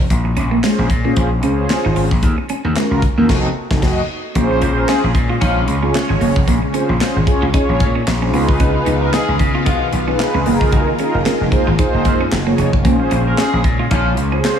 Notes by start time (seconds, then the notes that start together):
0.10 A#1, kick, closed hi-hat
0.25 muted clean electric guitar stroke
0.37 A#1 C#4, closed hi-hat
0.51 A#3
0.63 G#3 C#4 F4 G#4 C5, snare, clap, closed hi-hat
0.78 A#1, muted clean electric guitar stroke
0.90 A#2, kick, closed hi-hat
1.05 A#3 C#4 F4 G#4 C5
1.16 A#1, kick, closed hi-hat
1.43 C#2 C#4 F4 G#4 C5, closed hi-hat
1.69 muted clean electric guitar stroke, snare, clap, closed hi-hat
1.85 G#1 D#4
1.96 G#1 F4, open hi-hat
2.11 A#1, kick
2.23 D#2, kick, closed hi-hat
2.38 muted clean electric guitar stroke
2.49 C#4, closed hi-hat
2.64 D#2 A#3
2.76 G#3 C#4 F4 F#4 A#4, snare, clap, closed hi-hat
2.91 C#2, muted clean electric guitar stroke
3.02 kick, closed hi-hat
3.17 D#2 A#3 C#4 F4 F#4 A#4
3.29 F1 C4 D#4 F#4 A4, kick, snare, crash
3.70 F1 C4 D#4 F#4 A4, kick, snare
3.82 F1 F#4 D#5, kick, snare, crash
4.35 A#1 C#3 G#3 A#3 C#4 F4 G#4 C5, kick, closed hi-hat
4.51 muted clean electric guitar stroke
4.62 A#1 C#4, closed hi-hat
4.76 A#3 C#4 F4 A#4
4.88 G#3 C#4 F4 G#4, snare, clap, closed hi-hat
5.04 A#1
5.15 A#2, muted clean electric guitar stroke, kick, closed hi-hat
5.30 F4
5.41 A#1 F3 C#4 D#4 F4, kick, closed hi-hat
5.68 C#2, muted clean electric guitar stroke, closed hi-hat
5.82 C#4 F4 G#4 C#5
5.94 muted clean electric guitar stroke, snare, clap, closed hi-hat
6.09 G#1 C#4
6.21 F#1 A#3, open hi-hat
6.36 F1, kick
6.47 A#1 A#3, kick, closed hi-hat
6.62 muted clean electric guitar stroke
6.74 C#4 F4 G#4 C5, closed hi-hat
6.89 A#1
7.00 C#4 F4 G#4 C5, snare, clap, closed hi-hat
7.16 G#1
7.27 C#4 F4 G#4 C#5, muted clean electric guitar stroke, kick, closed hi-hat
7.42 C#2 F4
7.53 C#4 D#4 F4 G#4 C#5, kick, closed hi-hat
7.69 A#1
7.80 A#2, muted clean electric guitar stroke, kick, closed hi-hat
7.95 C#4
8.07 A#1, muted clean electric guitar stroke, snare, clap, closed hi-hat
8.22 C#4 F4 G#4 C5
8.33 C#2 D#3 B3 D#4 F4 G#4 B4, open hi-hat
8.49 kick
8.60 C#4, kick, closed hi-hat
8.75 muted clean electric guitar stroke
8.86 C#2 D#4, closed hi-hat
9.01 A#3 D#4 F#4 A#4
9.13 G#3 D#4 F4 G#4, snare, clap, closed hi-hat
9.28 C#2
9.39 C#3, muted clean electric guitar stroke, kick, closed hi-hat
9.55 F4
9.66 B2 F3 G#3 B3 D#4 F4, kick, closed hi-hat
9.93 B1, muted clean electric guitar stroke, closed hi-hat
10.07 C#4 D#4 F4 G#4 B4
10.19 muted clean electric guitar stroke, snare, clap, closed hi-hat
10.34 C#2 C#4
10.46 F#1 G#3 A#3 D#4 F4 G#4 A#4, open hi-hat
10.61 C#2, kick
10.72 F#1 F#4, kick, closed hi-hat
10.87 muted clean electric guitar stroke
10.99 C#4 D#4 F4 G#4 A#4, closed hi-hat
11.14 F#1
11.25 C#4 D#4 F4 G#4 A#4, snare, clap, closed hi-hat
11.41 F1
11.52 D#4 F4 G#4 C5, muted clean electric guitar stroke, kick, closed hi-hat
11.67 G#1 F4
11.78 D#4 F4 G#4 C5, kick, closed hi-hat
11.94 F#1
12.05 F#2, muted clean electric guitar stroke, kick, closed hi-hat
12.21 C#4
12.32 F#1, muted clean electric guitar stroke, snare, clap, closed hi-hat
12.46 A#3 D#4 F4 G#4 C#5
12.58 F1 C#4, closed hi-hat
12.73 kick
12.84 A#1 C#3 G#3 A#3 C#4 F4 G#4 C5, kick, closed hi-hat
13.00 muted clean electric guitar stroke
13.11 A#1 C#4, closed hi-hat
13.26 A#3 C#4 F4 A#4
13.38 G#3 C#4 F4 G#4, snare, clap, closed hi-hat
13.53 A#1
13.64 A#2, muted clean electric guitar stroke, kick, closed hi-hat
13.79 F4
13.91 A#1 F3 C#4 D#4 F4, kick, closed hi-hat
14.17 C#2, muted clean electric guitar stroke, closed hi-hat
14.32 C#4 F4 G#4 C5
14.44 muted clean electric guitar stroke, snare, clap, closed hi-hat